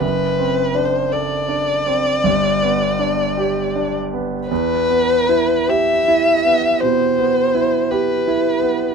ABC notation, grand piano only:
X:1
M:4/4
L:1/8
Q:1/4=54
K:Em
V:1 name="Grand piano"
(3F,,, C D (3A D C (3G,,, B, D (3G D B, | (3E,, B, E (3G E B, (3B,, B, E (3G E B, |]